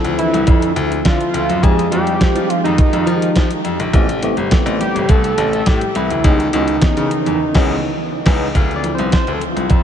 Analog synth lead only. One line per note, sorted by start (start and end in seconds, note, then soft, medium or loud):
0.18 0.72 E4 loud
1.06 1.64 F4 loud
1.63 1.92 G#4 loud
1.92 2.51 G4 loud
2.50 2.64 F4 loud
2.64 3.60 D#4 medium
4.81 5.11 G4 loud
5.09 5.37 A4 loud
5.38 5.68 A4 loud
5.66 5.97 G4 loud
5.96 6.26 E4 loud
6.25 6.53 D#4 medium
6.54 8.23 D#4 medium